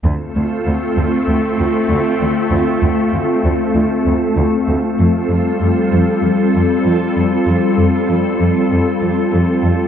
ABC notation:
X:1
M:4/4
L:1/8
Q:1/4=97
K:Dm
V:1 name="Ambient pad"
[A,CFA]8- | [A,CFA]8 | [G,CFA]8- | [G,CFA]8 |]
V:2 name="Cello section" clef=bass
D,, D,, D,, D,, D,, D,, D,, D,, | D,, D,, D,, D,, D,, D,, D,, D,, | F,, F,, F,, F,, F,, F,, F,, F,, | F,, F,, F,, F,, F,, F,, F,, F,, |]